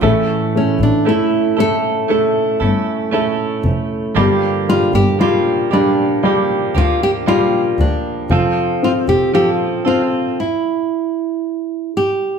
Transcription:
<<
  \new Staff \with { instrumentName = "Nylon-string guitar" } { \time 4/4 \key f \major \tempo 4 = 58 r8 cis'16 d'16 e'8 a'4 r4. | r8 f'16 g'16 f'8 d'8 r8 f'16 g'16 f'8 d'8 | r8 f'16 g'16 g'8 f'8 e'4. g'8 | }
  \new Staff \with { instrumentName = "Clean electric guitar" } { \time 4/4 \key f \major <a, e a cis' e' a'>4 <a cis' e' a'>8 <a cis' e' a'>8 <a cis' e' a'>8 <a cis' e' a'>8 <a cis' e' a'>4 | <g, d f bes d' g'>4 <f bes d' g'>8 <f bes d' g'>8 <f bes d' g'>8 <f bes d' g'>8 <f bes d' g'>4 | <f c' f' a'>4 <f c' f' a'>8 <c' f' a'>8 r2 | }
  \new Staff \with { instrumentName = "Upright piano" } { \clef bass \time 4/4 \key f \major a8 a8 a8 a8 a4 a4 | g8 g8 g8 g8 g4 g4 | f8 c'8 f8 c'8 r2 | }
  \new Staff \with { instrumentName = "Double bass" } { \clef bass \time 4/4 \key f \major a,,8. a,,4. r16 g,,4 f,,8 | g,,8. g,,4.~ g,,16 d,4 d,8 | f,,8. f,,4~ f,,16 r2 | }
>>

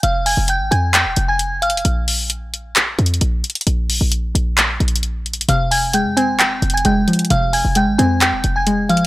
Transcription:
<<
  \new Staff \with { instrumentName = "Synth bell" } { \time 4/4 \key f \minor \tempo 4 = 132 <f'' f'''>8 <aes'' aes'''>8 <g'' g'''>8 <aes'' aes'''>8 <g'' g'''>8. <aes'' aes'''>8. <f'' f'''>8 | r1 | r1 | <f'' f'''>8 <aes'' aes'''>8 <g'' g'''>8 <aes'' aes'''>8 <g'' g'''>8. <aes'' aes'''>16 <g'' g'''>8 r8 |
<f'' f'''>8 <aes'' aes'''>8 <g'' g'''>8 <aes'' aes'''>8 <g'' g'''>8. <aes'' aes'''>8. <f'' f'''>8 | }
  \new Staff \with { instrumentName = "Synth pluck" } { \clef bass \time 4/4 \key f \minor r1 | r1 | r1 | c4 aes8 c'4. aes8 f8 |
c4 aes8 c'4. aes8 f8 | }
  \new Staff \with { instrumentName = "808-style bass" } { \clef bass \time 4/4 \key f \minor f,,8. f,,8 aes,,16 f,8. e,,16 f,,4 g,,16 f,,16 | bes,,2~ bes,,8 f,8 bes,,8 r8 | bes,,8. bes,,8. bes,,4 bes,,4. | f,,4~ f,,16 f,8~ f,32 f,,8~ f,,32 f,,8 f,,8 r8 |
f,,8. f,,8 aes,,16 f,8. e,,16 f,,4 g,,16 f,,16 | }
  \new DrumStaff \with { instrumentName = "Drums" } \drummode { \time 4/4 hh8 hho8 hh8 hh8 <hc hh>8 hh8 \tuplet 3/2 { hh16 r16 r16 hh16 hh16 hh16 } | hh8 hho8 hh8 hh8 \tuplet 3/2 { <hc hh>16 r16 r16 hh16 hh16 hh16 } hh8 hh32 hh32 hh32 hh32 | hh8 hho8 hh8 hh8 \tuplet 3/2 { <hc hh>16 r16 r16 hh16 hh16 hh16 hh16 r16 r16 hh16 hh16 hh16 } | hh8 hho8 hh8 hh8 \tuplet 3/2 { <hc hh>16 r16 r16 hh16 hh16 hh16 } hh8 hh32 hh32 hh32 hh32 |
hh8 hho8 hh8 hh8 <hc hh>8 hh8 \tuplet 3/2 { hh16 r16 r16 hh16 hh16 r16 } | }
>>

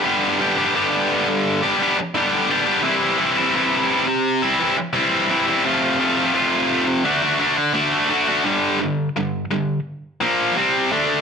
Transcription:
\new Staff \with { instrumentName = "Distorted electric guitar" } { \time 4/4 \key g \mixolydian \tempo 4 = 86 <g, d g b d' g'>8 <g b d' g'>16 <g b d' g'>16 <g, d g b d' g'>4~ <g, d g b d' g'>16 <g b d' g'>16 <g b d' g'>8 <g, d g b d' g'>8 <g b d' g'>16 <g b d' g'>16 | <c e g c' e'>8 <e g c' e'>16 <g c' e'>16 <c e g c' e'>4~ <c e g c' e'>16 <g c' e'>16 <e g c' e'>8 <c e g c' e'>8 <e g c' e'>16 <g c' e'>16 | <f, c f a c' f'>8 <f a c' f'>16 <f a c' f'>16 <f, c f a c' f'>4 <d a d' fis'>16 <a d' fis'>16 <d a d' fis'>8 <d a d' fis'>8 <d a d' fis'>16 <a d' fis'>16 | \key c \lydian <g, d g>8 <g, d>8 <g, d>8 <g, d>8 r8 <bes, f bes>8 <c g c'>8 <d a d'>8 | }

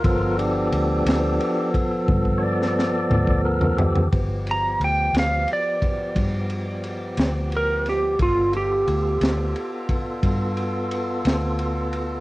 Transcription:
<<
  \new Staff \with { instrumentName = "Electric slide guitar" } { \time 12/8 \key g \mixolydian \tempo 4. = 59 r1. | r8 bes''8 g''8 f''8 d''2. bes'8 g'8 | f'8 g'2 r2. r8 | }
  \new Staff \with { instrumentName = "Tonewheel organ" } { \time 12/8 \key g \mixolydian <f' bes'>8 <d' g'>2 r4 <cis'' d''>4. bes'8 g'8 | <f b g'>1. | <b f' a'>1. | }
  \new Staff \with { instrumentName = "Tonewheel organ" } { \time 12/8 \key g \mixolydian <f b a'>1. | r1. | r1. | }
  \new Staff \with { instrumentName = "Fingered electric bass" } { \clef bass \time 12/8 \key g \mixolydian g,,4 d,8 d,8 r4 g,4. d,4. | g,,4 d,8 d,8 r4 g,4. d,4. | g,,4 d,8 d,8 r4 g,4. d,4. | }
  \new DrumStaff \with { instrumentName = "Drums" } \drummode { \time 12/8 <bd cymr>8 cymr8 cymr8 <cymr sn>8 cymr8 <bd cymr>8 <bd tommh>16 bd8 sn16 sn8 toml16 bd8 tomfh16 tomfh16 tomfh16 | <bd cymr>8 cymr8 cymr8 <cymr sn>8 cymr8 <bd cymr>8 <bd cymr>8 cymr8 cymr8 <cymr sn>8 cymr8 <cymr sn>8 | <bd cymr>8 cymr8 cymr8 <cymr sn>8 cymr8 <bd cymr>8 <bd cymr>8 cymr8 cymr8 <cymr sn>8 cymr8 cymr8 | }
>>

